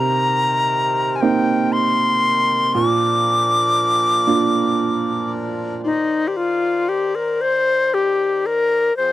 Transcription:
0, 0, Header, 1, 4, 480
1, 0, Start_track
1, 0, Key_signature, -3, "minor"
1, 0, Tempo, 1008403
1, 1305, Time_signature, 6, 3, 24, 8
1, 1791, Tempo, 1038062
1, 4270, End_track
2, 0, Start_track
2, 0, Title_t, "Flute"
2, 0, Program_c, 0, 73
2, 0, Note_on_c, 0, 82, 92
2, 551, Note_on_c, 0, 80, 61
2, 558, Note_off_c, 0, 82, 0
2, 575, Note_on_c, 0, 79, 87
2, 582, Note_off_c, 0, 80, 0
2, 820, Note_on_c, 0, 84, 90
2, 828, Note_off_c, 0, 79, 0
2, 1300, Note_on_c, 0, 86, 101
2, 1307, Note_off_c, 0, 84, 0
2, 2507, Note_off_c, 0, 86, 0
2, 2755, Note_on_c, 0, 63, 68
2, 2953, Note_on_c, 0, 67, 45
2, 2960, Note_off_c, 0, 63, 0
2, 2995, Note_on_c, 0, 65, 77
2, 3002, Note_off_c, 0, 67, 0
2, 3236, Note_on_c, 0, 67, 73
2, 3243, Note_off_c, 0, 65, 0
2, 3358, Note_on_c, 0, 70, 75
2, 3365, Note_off_c, 0, 67, 0
2, 3478, Note_on_c, 0, 72, 86
2, 3485, Note_off_c, 0, 70, 0
2, 3722, Note_on_c, 0, 67, 73
2, 3729, Note_off_c, 0, 72, 0
2, 3964, Note_on_c, 0, 70, 78
2, 3971, Note_off_c, 0, 67, 0
2, 4195, Note_off_c, 0, 70, 0
2, 4197, Note_on_c, 0, 72, 76
2, 4270, Note_off_c, 0, 72, 0
2, 4270, End_track
3, 0, Start_track
3, 0, Title_t, "Accordion"
3, 0, Program_c, 1, 21
3, 0, Note_on_c, 1, 51, 69
3, 0, Note_on_c, 1, 60, 55
3, 0, Note_on_c, 1, 70, 78
3, 1288, Note_off_c, 1, 60, 0
3, 1291, Note_off_c, 1, 51, 0
3, 1311, Note_on_c, 1, 62, 63
3, 1313, Note_on_c, 1, 53, 69
3, 2733, Note_off_c, 1, 70, 0
3, 2740, Note_off_c, 1, 62, 0
3, 2741, Note_off_c, 1, 53, 0
3, 2746, Note_on_c, 1, 51, 58
3, 2748, Note_on_c, 1, 74, 47
3, 2750, Note_on_c, 1, 72, 58
3, 4175, Note_off_c, 1, 51, 0
3, 4176, Note_off_c, 1, 74, 0
3, 4178, Note_off_c, 1, 72, 0
3, 4204, Note_on_c, 1, 53, 64
3, 4206, Note_on_c, 1, 68, 73
3, 4207, Note_on_c, 1, 60, 53
3, 4270, Note_off_c, 1, 53, 0
3, 4270, Note_off_c, 1, 60, 0
3, 4270, Note_off_c, 1, 68, 0
3, 4270, End_track
4, 0, Start_track
4, 0, Title_t, "Upright piano"
4, 0, Program_c, 2, 0
4, 0, Control_c, 2, 64, 127
4, 0, Note_on_c, 2, 48, 59
4, 581, Note_on_c, 2, 58, 44
4, 584, Note_on_c, 2, 60, 44
4, 586, Note_on_c, 2, 63, 48
4, 1285, Note_off_c, 2, 58, 0
4, 1286, Note_off_c, 2, 48, 0
4, 1286, Note_off_c, 2, 60, 0
4, 1288, Note_off_c, 2, 63, 0
4, 1307, Note_on_c, 2, 46, 65
4, 1311, Control_c, 2, 64, 0
4, 1405, Control_c, 2, 64, 127
4, 2027, Note_on_c, 2, 58, 34
4, 2027, Note_on_c, 2, 62, 33
4, 2032, Note_on_c, 2, 65, 46
4, 2732, Note_off_c, 2, 58, 0
4, 2732, Note_off_c, 2, 62, 0
4, 2734, Note_off_c, 2, 46, 0
4, 2735, Note_off_c, 2, 65, 0
4, 2756, Control_c, 2, 64, 0
4, 4270, End_track
0, 0, End_of_file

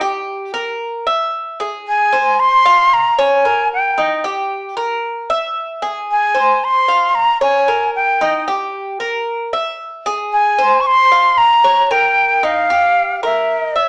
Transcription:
0, 0, Header, 1, 3, 480
1, 0, Start_track
1, 0, Tempo, 528169
1, 1695, Time_signature, 4, 2, 24, 8
1, 12620, End_track
2, 0, Start_track
2, 0, Title_t, "Flute"
2, 0, Program_c, 0, 73
2, 1707, Note_on_c, 0, 80, 103
2, 2178, Note_on_c, 0, 84, 121
2, 2192, Note_off_c, 0, 80, 0
2, 2668, Note_on_c, 0, 82, 106
2, 2681, Note_off_c, 0, 84, 0
2, 2903, Note_on_c, 0, 80, 103
2, 2917, Note_off_c, 0, 82, 0
2, 3379, Note_off_c, 0, 80, 0
2, 3394, Note_on_c, 0, 79, 86
2, 3832, Note_off_c, 0, 79, 0
2, 5554, Note_on_c, 0, 80, 99
2, 6037, Note_on_c, 0, 84, 111
2, 6050, Note_off_c, 0, 80, 0
2, 6497, Note_on_c, 0, 82, 111
2, 6511, Note_off_c, 0, 84, 0
2, 6738, Note_off_c, 0, 82, 0
2, 6745, Note_on_c, 0, 80, 102
2, 7188, Note_off_c, 0, 80, 0
2, 7231, Note_on_c, 0, 79, 85
2, 7671, Note_off_c, 0, 79, 0
2, 9386, Note_on_c, 0, 80, 110
2, 9819, Note_on_c, 0, 85, 86
2, 9832, Note_off_c, 0, 80, 0
2, 9874, Note_on_c, 0, 84, 127
2, 9888, Note_off_c, 0, 85, 0
2, 10339, Note_on_c, 0, 82, 115
2, 10353, Note_off_c, 0, 84, 0
2, 10826, Note_on_c, 0, 79, 97
2, 10840, Note_off_c, 0, 82, 0
2, 11313, Note_on_c, 0, 77, 110
2, 11327, Note_off_c, 0, 79, 0
2, 12027, Note_off_c, 0, 77, 0
2, 12037, Note_on_c, 0, 76, 88
2, 12620, Note_off_c, 0, 76, 0
2, 12620, End_track
3, 0, Start_track
3, 0, Title_t, "Cuban tres"
3, 0, Program_c, 1, 25
3, 8, Note_on_c, 1, 67, 88
3, 477, Note_off_c, 1, 67, 0
3, 488, Note_on_c, 1, 70, 78
3, 957, Note_off_c, 1, 70, 0
3, 969, Note_on_c, 1, 76, 84
3, 1438, Note_off_c, 1, 76, 0
3, 1454, Note_on_c, 1, 68, 83
3, 1920, Note_off_c, 1, 68, 0
3, 1932, Note_on_c, 1, 72, 85
3, 2399, Note_off_c, 1, 72, 0
3, 2413, Note_on_c, 1, 77, 84
3, 2880, Note_off_c, 1, 77, 0
3, 2895, Note_on_c, 1, 73, 86
3, 3128, Note_off_c, 1, 73, 0
3, 3136, Note_on_c, 1, 70, 74
3, 3602, Note_off_c, 1, 70, 0
3, 3614, Note_on_c, 1, 63, 81
3, 3848, Note_off_c, 1, 63, 0
3, 3856, Note_on_c, 1, 67, 80
3, 4322, Note_off_c, 1, 67, 0
3, 4333, Note_on_c, 1, 70, 78
3, 4800, Note_off_c, 1, 70, 0
3, 4815, Note_on_c, 1, 76, 83
3, 5281, Note_off_c, 1, 76, 0
3, 5291, Note_on_c, 1, 68, 82
3, 5760, Note_off_c, 1, 68, 0
3, 5767, Note_on_c, 1, 72, 80
3, 6238, Note_off_c, 1, 72, 0
3, 6255, Note_on_c, 1, 77, 78
3, 6722, Note_off_c, 1, 77, 0
3, 6736, Note_on_c, 1, 73, 79
3, 6969, Note_off_c, 1, 73, 0
3, 6980, Note_on_c, 1, 70, 72
3, 7445, Note_off_c, 1, 70, 0
3, 7462, Note_on_c, 1, 63, 83
3, 7693, Note_off_c, 1, 63, 0
3, 7704, Note_on_c, 1, 67, 78
3, 8167, Note_off_c, 1, 67, 0
3, 8179, Note_on_c, 1, 70, 78
3, 8645, Note_off_c, 1, 70, 0
3, 8661, Note_on_c, 1, 76, 82
3, 9126, Note_off_c, 1, 76, 0
3, 9142, Note_on_c, 1, 68, 89
3, 9606, Note_off_c, 1, 68, 0
3, 9619, Note_on_c, 1, 72, 87
3, 10085, Note_off_c, 1, 72, 0
3, 10103, Note_on_c, 1, 77, 80
3, 10567, Note_off_c, 1, 77, 0
3, 10581, Note_on_c, 1, 73, 82
3, 10813, Note_off_c, 1, 73, 0
3, 10822, Note_on_c, 1, 70, 83
3, 11287, Note_off_c, 1, 70, 0
3, 11297, Note_on_c, 1, 63, 88
3, 11531, Note_off_c, 1, 63, 0
3, 11542, Note_on_c, 1, 67, 81
3, 12007, Note_off_c, 1, 67, 0
3, 12024, Note_on_c, 1, 70, 81
3, 12488, Note_off_c, 1, 70, 0
3, 12502, Note_on_c, 1, 76, 81
3, 12620, Note_off_c, 1, 76, 0
3, 12620, End_track
0, 0, End_of_file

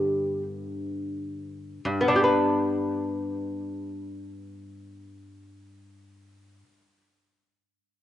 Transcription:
0, 0, Header, 1, 2, 480
1, 0, Start_track
1, 0, Key_signature, 1, "major"
1, 0, Tempo, 500000
1, 7704, End_track
2, 0, Start_track
2, 0, Title_t, "Lute"
2, 0, Program_c, 0, 24
2, 0, Note_on_c, 0, 43, 45
2, 0, Note_on_c, 0, 50, 31
2, 0, Note_on_c, 0, 59, 31
2, 0, Note_on_c, 0, 67, 56
2, 407, Note_off_c, 0, 67, 0
2, 1711, Note_off_c, 0, 43, 0
2, 1720, Note_off_c, 0, 50, 0
2, 1727, Note_off_c, 0, 59, 0
2, 1777, Note_on_c, 0, 43, 51
2, 1928, Note_on_c, 0, 59, 41
2, 1998, Note_on_c, 0, 62, 44
2, 2070, Note_on_c, 0, 67, 42
2, 2144, Note_off_c, 0, 67, 0
2, 2148, Note_on_c, 0, 71, 39
2, 6355, Note_off_c, 0, 43, 0
2, 6506, Note_off_c, 0, 59, 0
2, 6577, Note_off_c, 0, 62, 0
2, 6726, Note_off_c, 0, 71, 0
2, 7704, End_track
0, 0, End_of_file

